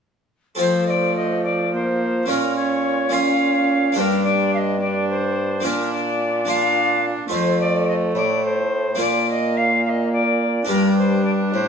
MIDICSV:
0, 0, Header, 1, 5, 480
1, 0, Start_track
1, 0, Tempo, 561272
1, 502, Time_signature, 6, 3, 24, 8
1, 9990, End_track
2, 0, Start_track
2, 0, Title_t, "Recorder"
2, 0, Program_c, 0, 74
2, 507, Note_on_c, 0, 72, 76
2, 729, Note_off_c, 0, 72, 0
2, 739, Note_on_c, 0, 75, 64
2, 769, Note_on_c, 0, 74, 69
2, 778, Note_off_c, 0, 75, 0
2, 978, Note_off_c, 0, 74, 0
2, 992, Note_on_c, 0, 75, 75
2, 1225, Note_off_c, 0, 75, 0
2, 1231, Note_on_c, 0, 74, 69
2, 1465, Note_off_c, 0, 74, 0
2, 1479, Note_on_c, 0, 72, 77
2, 1959, Note_on_c, 0, 70, 80
2, 1971, Note_off_c, 0, 72, 0
2, 2187, Note_off_c, 0, 70, 0
2, 2192, Note_on_c, 0, 73, 71
2, 2673, Note_on_c, 0, 77, 80
2, 2685, Note_off_c, 0, 73, 0
2, 3382, Note_off_c, 0, 77, 0
2, 3387, Note_on_c, 0, 72, 71
2, 3422, Note_on_c, 0, 70, 77
2, 3431, Note_off_c, 0, 72, 0
2, 3617, Note_off_c, 0, 70, 0
2, 3622, Note_on_c, 0, 74, 79
2, 3859, Note_off_c, 0, 74, 0
2, 3876, Note_on_c, 0, 77, 69
2, 3909, Note_on_c, 0, 75, 76
2, 3918, Note_off_c, 0, 77, 0
2, 4099, Note_off_c, 0, 75, 0
2, 4104, Note_on_c, 0, 74, 69
2, 4340, Note_off_c, 0, 74, 0
2, 4352, Note_on_c, 0, 72, 85
2, 4834, Note_on_c, 0, 70, 76
2, 4847, Note_off_c, 0, 72, 0
2, 5063, Note_off_c, 0, 70, 0
2, 5068, Note_on_c, 0, 74, 81
2, 5549, Note_on_c, 0, 77, 84
2, 5561, Note_off_c, 0, 74, 0
2, 6024, Note_off_c, 0, 77, 0
2, 6266, Note_on_c, 0, 72, 86
2, 6484, Note_off_c, 0, 72, 0
2, 6505, Note_on_c, 0, 74, 83
2, 6734, Note_off_c, 0, 74, 0
2, 6739, Note_on_c, 0, 75, 90
2, 6792, Note_off_c, 0, 75, 0
2, 6979, Note_on_c, 0, 74, 74
2, 7211, Note_off_c, 0, 74, 0
2, 7215, Note_on_c, 0, 72, 89
2, 7710, Note_on_c, 0, 74, 88
2, 7723, Note_off_c, 0, 72, 0
2, 7941, Note_off_c, 0, 74, 0
2, 7952, Note_on_c, 0, 75, 89
2, 8184, Note_on_c, 0, 77, 86
2, 8197, Note_off_c, 0, 75, 0
2, 8411, Note_off_c, 0, 77, 0
2, 8416, Note_on_c, 0, 77, 70
2, 8457, Note_on_c, 0, 75, 76
2, 8465, Note_off_c, 0, 77, 0
2, 8650, Note_off_c, 0, 75, 0
2, 8657, Note_on_c, 0, 74, 85
2, 9127, Note_off_c, 0, 74, 0
2, 9136, Note_on_c, 0, 70, 78
2, 9372, Note_off_c, 0, 70, 0
2, 9383, Note_on_c, 0, 72, 71
2, 9608, Note_off_c, 0, 72, 0
2, 9614, Note_on_c, 0, 74, 74
2, 9668, Note_off_c, 0, 74, 0
2, 9863, Note_on_c, 0, 72, 70
2, 9990, Note_off_c, 0, 72, 0
2, 9990, End_track
3, 0, Start_track
3, 0, Title_t, "Harpsichord"
3, 0, Program_c, 1, 6
3, 472, Note_on_c, 1, 69, 42
3, 479, Note_on_c, 1, 60, 40
3, 490, Note_on_c, 1, 65, 37
3, 502, Note_on_c, 1, 53, 44
3, 1900, Note_off_c, 1, 69, 0
3, 1903, Note_off_c, 1, 60, 0
3, 1909, Note_off_c, 1, 65, 0
3, 1914, Note_off_c, 1, 53, 0
3, 1931, Note_on_c, 1, 58, 37
3, 1941, Note_on_c, 1, 61, 40
3, 1954, Note_on_c, 1, 65, 38
3, 1963, Note_on_c, 1, 46, 45
3, 2636, Note_off_c, 1, 58, 0
3, 2644, Note_off_c, 1, 61, 0
3, 2646, Note_on_c, 1, 58, 43
3, 2651, Note_off_c, 1, 65, 0
3, 2654, Note_on_c, 1, 61, 42
3, 2665, Note_on_c, 1, 65, 46
3, 3345, Note_off_c, 1, 58, 0
3, 3355, Note_on_c, 1, 58, 41
3, 3359, Note_off_c, 1, 61, 0
3, 3361, Note_off_c, 1, 46, 0
3, 3364, Note_off_c, 1, 65, 0
3, 3367, Note_on_c, 1, 62, 41
3, 3375, Note_on_c, 1, 67, 41
3, 3390, Note_on_c, 1, 43, 45
3, 4773, Note_off_c, 1, 58, 0
3, 4779, Note_off_c, 1, 62, 0
3, 4783, Note_off_c, 1, 67, 0
3, 4790, Note_off_c, 1, 43, 0
3, 4793, Note_on_c, 1, 58, 42
3, 4805, Note_on_c, 1, 62, 45
3, 4815, Note_on_c, 1, 65, 42
3, 4825, Note_on_c, 1, 46, 50
3, 5502, Note_off_c, 1, 58, 0
3, 5509, Note_off_c, 1, 62, 0
3, 5514, Note_off_c, 1, 65, 0
3, 5519, Note_on_c, 1, 58, 47
3, 5532, Note_on_c, 1, 62, 48
3, 5542, Note_on_c, 1, 65, 47
3, 6223, Note_off_c, 1, 46, 0
3, 6224, Note_off_c, 1, 58, 0
3, 6227, Note_off_c, 1, 65, 0
3, 6227, Note_on_c, 1, 57, 47
3, 6231, Note_off_c, 1, 62, 0
3, 6238, Note_on_c, 1, 65, 46
3, 6255, Note_on_c, 1, 41, 52
3, 6939, Note_off_c, 1, 41, 0
3, 6973, Note_on_c, 1, 45, 50
3, 7643, Note_off_c, 1, 57, 0
3, 7648, Note_off_c, 1, 65, 0
3, 7655, Note_on_c, 1, 58, 45
3, 7657, Note_off_c, 1, 45, 0
3, 7660, Note_on_c, 1, 62, 46
3, 7675, Note_on_c, 1, 65, 45
3, 7682, Note_on_c, 1, 46, 51
3, 9082, Note_off_c, 1, 58, 0
3, 9085, Note_off_c, 1, 62, 0
3, 9092, Note_off_c, 1, 65, 0
3, 9096, Note_off_c, 1, 46, 0
3, 9105, Note_on_c, 1, 70, 44
3, 9113, Note_on_c, 1, 62, 40
3, 9128, Note_on_c, 1, 67, 45
3, 9138, Note_on_c, 1, 43, 50
3, 9826, Note_off_c, 1, 43, 0
3, 9868, Note_on_c, 1, 45, 49
3, 9990, Note_off_c, 1, 45, 0
3, 9990, Note_off_c, 1, 62, 0
3, 9990, Note_off_c, 1, 67, 0
3, 9990, Note_off_c, 1, 70, 0
3, 9990, End_track
4, 0, Start_track
4, 0, Title_t, "Viola"
4, 0, Program_c, 2, 41
4, 505, Note_on_c, 2, 57, 56
4, 1474, Note_on_c, 2, 58, 54
4, 1487, Note_off_c, 2, 57, 0
4, 1948, Note_off_c, 2, 58, 0
4, 1953, Note_on_c, 2, 61, 56
4, 2658, Note_off_c, 2, 61, 0
4, 2669, Note_on_c, 2, 61, 61
4, 3390, Note_on_c, 2, 62, 55
4, 3403, Note_off_c, 2, 61, 0
4, 4104, Note_off_c, 2, 62, 0
4, 4109, Note_on_c, 2, 62, 61
4, 4811, Note_off_c, 2, 62, 0
4, 4815, Note_on_c, 2, 62, 58
4, 5521, Note_off_c, 2, 62, 0
4, 5538, Note_on_c, 2, 62, 65
4, 6242, Note_off_c, 2, 62, 0
4, 6251, Note_on_c, 2, 57, 61
4, 7655, Note_off_c, 2, 57, 0
4, 7686, Note_on_c, 2, 58, 62
4, 9103, Note_off_c, 2, 58, 0
4, 9130, Note_on_c, 2, 62, 63
4, 9990, Note_off_c, 2, 62, 0
4, 9990, End_track
5, 0, Start_track
5, 0, Title_t, "Bassoon"
5, 0, Program_c, 3, 70
5, 496, Note_on_c, 3, 53, 62
5, 1912, Note_off_c, 3, 53, 0
5, 1949, Note_on_c, 3, 46, 60
5, 3359, Note_off_c, 3, 46, 0
5, 3384, Note_on_c, 3, 43, 61
5, 4793, Note_off_c, 3, 43, 0
5, 4823, Note_on_c, 3, 46, 60
5, 6105, Note_off_c, 3, 46, 0
5, 6251, Note_on_c, 3, 41, 63
5, 6937, Note_off_c, 3, 41, 0
5, 6966, Note_on_c, 3, 45, 59
5, 7674, Note_off_c, 3, 45, 0
5, 7687, Note_on_c, 3, 46, 65
5, 9104, Note_off_c, 3, 46, 0
5, 9129, Note_on_c, 3, 43, 58
5, 9860, Note_on_c, 3, 45, 50
5, 9873, Note_off_c, 3, 43, 0
5, 9990, Note_off_c, 3, 45, 0
5, 9990, End_track
0, 0, End_of_file